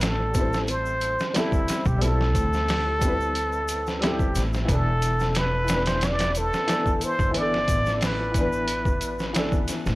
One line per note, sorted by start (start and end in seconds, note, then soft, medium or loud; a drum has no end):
0.00 1.16 A1 medium
0.00 0.29 G3 medium
0.00 0.31 C4 medium
0.00 0.33 E4 medium
0.00 0.34 A4 medium
0.00 0.71 A4 medium
0.00 snare loud
0.00 closed hi-hat medium
0.00 shaker medium
0.31 1.29 G3 medium
0.31 1.31 C4 medium
0.31 kick medium
0.31 closed hi-hat medium
0.31 shaker medium
0.37 1.32 E4 medium
0.37 1.34 C5 medium
0.53 snare medium
0.53 shaker soft
0.68 1.37 C5 loud
0.68 closed hi-hat medium
0.68 shaker soft
0.86 shaker soft
1.01 closed hi-hat medium
1.01 shaker medium
1.19 snare soft
1.19 shaker soft
1.34 1.96 G3 medium
1.34 1.98 C4 medium
1.34 1.88 E4 medium
1.34 1.99 E4 medium
1.34 snare loud
1.34 closed hi-hat medium
1.34 shaker medium
1.38 2.00 A4 loud
1.52 kick loud
1.52 shaker soft
1.68 snare medium
1.68 closed hi-hat medium
1.68 shaker medium
1.85 2.35 B1 medium
1.85 2.03 G4 medium
1.85 kick medium
1.85 shaker soft
1.98 2.96 G3 medium
1.98 2.98 C4 medium
1.98 3.96 A4 loud
1.98 closed hi-hat medium
1.98 shaker medium
2.04 2.99 E4 medium
2.04 3.01 A4 medium
2.21 snare soft
2.35 4.32 D2 medium
2.35 kick loud
2.35 closed hi-hat medium
2.35 shaker medium
2.53 snare soft
2.53 shaker soft
2.68 snare loud
2.68 open hi-hat medium
2.68 shaker medium
2.99 3.96 G3 medium
2.99 3.98 C4 medium
2.99 kick medium
2.99 closed hi-hat medium
2.99 shaker medium
3.05 4.00 E4 medium
3.05 4.01 B4 medium
3.20 shaker soft
3.35 closed hi-hat medium
3.35 shaker soft
3.52 shaker soft
3.68 closed hi-hat medium
3.68 shaker medium
3.86 snare soft
3.86 shaker soft
3.96 4.04 A4 medium
4.01 4.64 G3 medium
4.01 4.65 C4 medium
4.01 4.66 E4 medium
4.01 4.42 G4 medium
4.01 snare loud
4.01 closed hi-hat medium
4.01 shaker medium
4.05 4.66 A4 medium
4.19 kick medium
4.19 shaker soft
4.35 4.65 A1 medium
4.35 snare soft
4.35 closed hi-hat medium
4.35 shaker medium
4.53 snare soft
4.53 shaker soft
4.65 6.49 E1 loud
4.65 5.63 E3 medium
4.65 5.65 B3 medium
4.65 kick loud
4.65 closed hi-hat medium
4.65 shaker medium
4.70 5.66 D4 medium
4.70 5.38 A4 loud
4.75 5.68 A4 medium
5.02 closed hi-hat medium
5.02 shaker medium
5.19 snare soft
5.19 shaker soft
5.35 5.90 B4 loud
5.35 snare loud
5.35 closed hi-hat medium
5.35 shaker medium
5.65 6.63 E3 medium
5.65 6.64 B3 medium
5.65 closed hi-hat medium
5.65 shaker loud
5.70 6.66 D4 medium
5.70 snare loud
5.74 6.67 B4 medium
5.86 6.06 C5 loud
5.86 snare loud
5.86 closed hi-hat medium
5.86 shaker soft
6.01 6.39 D5 loud
6.01 snare loud
6.01 closed hi-hat medium
6.01 shaker medium
6.19 snare loud
6.19 closed hi-hat medium
6.19 shaker soft
6.35 7.05 A4 loud
6.35 closed hi-hat medium
6.35 shaker loud
6.53 snare soft
6.53 shaker soft
6.67 7.30 E3 medium
6.67 7.31 B3 medium
6.67 7.32 D4 medium
6.67 snare loud
6.67 closed hi-hat medium
6.67 shaker medium
6.72 7.33 A4 loud
6.86 kick medium
6.86 shaker soft
7.01 7.39 C5 loud
7.01 closed hi-hat medium
7.01 shaker medium
7.19 7.68 G1 medium
7.19 kick loud
7.19 shaker soft
7.31 8.29 E3 medium
7.31 8.31 B3 medium
7.31 closed hi-hat medium
7.35 8.33 D4 medium
7.35 8.05 D5 loud
7.35 shaker soft
7.41 8.34 A4 medium
7.54 snare soft
7.68 9.65 A1 medium
7.68 kick medium
7.68 closed hi-hat medium
7.68 shaker medium
7.86 snare soft
7.86 shaker soft
8.01 9.36 B4 medium
8.01 snare loud
8.01 open hi-hat medium
8.01 shaker medium
8.32 9.30 E3 medium
8.32 9.31 B3 medium
8.32 kick medium
8.32 closed hi-hat medium
8.32 shaker medium
8.38 9.33 D4 medium
8.38 9.34 B4 medium
8.52 shaker soft
8.68 closed hi-hat medium
8.68 shaker medium
8.85 kick medium
8.85 shaker soft
9.01 closed hi-hat medium
9.01 shaker loud
9.19 snare soft
9.19 shaker soft
9.33 9.95 E3 medium
9.33 9.95 B3 medium
9.33 9.95 D4 medium
9.33 snare loud
9.33 closed hi-hat medium
9.33 shaker medium
9.38 9.95 A4 medium
9.52 kick loud
9.52 shaker soft
9.68 snare soft
9.68 closed hi-hat medium
9.68 shaker medium
9.86 9.95 A1 medium
9.86 snare soft
9.86 shaker soft